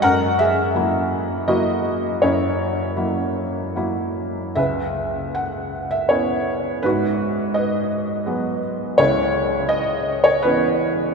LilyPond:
<<
  \new Staff \with { instrumentName = "Felt piano" } { \time 3/4 \key cis \dorian \tempo 4 = 82 << { fis''8 e''4. dis''4 | cis''2 r4 | e''4 fis''8. e''16 cis''4 | b'4 dis''4. r8 |
cis''4 dis''8. cis''16 b'4 | } \\ { ais'8 gis'4. fis'4 | e'2 r4 | b'4. r4. | fis'4 b'4. r8 |
e'4. r4. | } >> }
  \new Staff \with { instrumentName = "Felt piano" } { \time 3/4 \key cis \dorian fis,4 <fis ais e'>4 <fis ais e'>4 | fis,4 <fis ais e'>4 <fis ais e'>4 | cis,2 <b cis' e'>4 | gis,2 <fis gis b>4 |
cis,2 <e b cis'>4 | }
>>